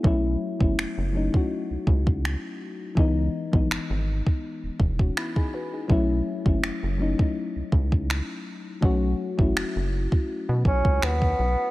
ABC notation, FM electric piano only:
X:1
M:4/4
L:1/16
Q:"Swing 16ths" 1/4=82
K:Bmix
V:1 name="FM electric piano"
B, z12 z3 | z8 z3 [CF] [B,Eb] [DG] [FB] [DG]- | [DG] z12 z3 | z16 |]
V:2 name="FM electric piano"
[F,A,CE]3 [F,A,CE]3 [F,A,CD] [F,A,CF]6- [F,A,CF] z2 | [E,G,B,D]3 [E,G,B,D]6- [E,G,B,D] z6 | [F,A,CE]3 [F,A,CE]3 [F,A,CD] [F,A,CD]6- [F,A,CD] z2 | [F,A,CF]3 [F,A,CE]6- [F,A,CE] z6 |]